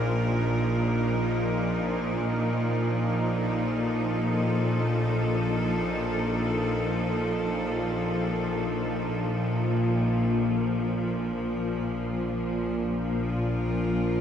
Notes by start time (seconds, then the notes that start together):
Already playing: A#1 A#2 F3 D#4 F4 A#4
3.37 A4
10.35 A#1 A#2
13.20 F4
13.51 A#4